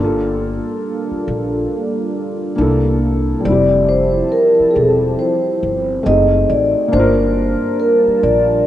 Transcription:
Already playing: G1 G3 A#3 D4 F4 A4
0.01 F4 A4
1.12 muted upright bass stroke
1.28 A#1
2.56 C2 C3 A#3 D4 E4 A4
2.61 A4
3.40 G3 C4
3.44 F1 F3 C4 E4 G4 D5 A5
3.52 G4
3.89 C5
4.32 A#4
4.60 muted upright bass stroke
4.71 G#4
4.75 E1 A4
5.19 C5
5.63 G1
6.03 F#1 A3 C4 D#4 F#4 D#5
6.09 G#4
6.50 A1 D5
6.88 A#3 D4
6.92 G1 G3 D4 F4 A#4 C5 A5
7.00 A#4
7.80 A#4
8.07 muted upright bass stroke
8.23 A#1 D5

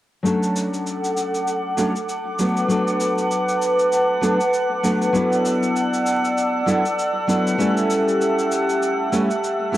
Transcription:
0.23 F#3 A3 C#4 D4 A4 F#5 A5 D6, shaker
0.27 A4
0.43 shaker
0.56 shaker
0.74 shaker
0.87 shaker
1.04 shaker
1.17 shaker
1.35 shaker
1.47 shaker
1.77 F#3 A3 C#4 D4 A4, shaker
1.96 shaker
2.09 shaker
2.39 F#3 A3 B3 D4 A4 B4 F#5, shaker
2.57 shaker
2.68 F#3 A3 B3 D4 A4, shaker
2.88 shaker
3.01 shaker
3.18 shaker
3.31 shaker
3.49 shaker
3.62 shaker
3.79 shaker
3.92 shaker
4.21 F#3 A3 B3 D4 A4, shaker
4.41 shaker
4.54 shaker
4.83 F#3 A3 B3 D4 A4, shaker
5.02 shaker
5.13 F#3 B3 D4 E4 A4 D5 E6, shaker
5.32 shaker
5.46 shaker
5.63 shaker
5.76 shaker
5.94 shaker
6.06 shaker
6.25 shaker
6.38 shaker
6.66 F#3 B3 D4 E4 A4, shaker
6.85 shaker
6.99 shaker
7.27 F#3 B3 D4 E4 A4, shaker
7.47 shaker
7.58 G3 A3 C#4 E4 G4 A4 E5 A5, shaker
7.77 shaker
7.90 shaker
8.08 shaker
8.21 shaker
8.39 shaker
8.52 shaker
8.69 shaker
8.82 shaker
9.12 G3 A3 C#4 E4 A4, shaker
9.31 shaker
9.44 shaker
9.72 G3 A3 C#4 E4 A4

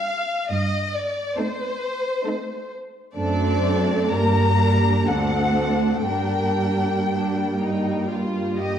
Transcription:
Already playing: G3 D4 A#4 F5
0.51 G2 D#5
0.95 D5
1.37 A3 C4 D#4 A4 C5
2.25 A3 C4 D#4 A4
3.16 F#2 A3 C4 D4 A4 D5
4.13 G2 G3 A#3 D4 A#4 A#5
5.08 D2 A3 C4 D4 A4 F#5
6.05 G2 G3 A#3 D4 A#4 G5
7.09 D4
7.59 D#4
8.08 F4
8.58 G4 D#5

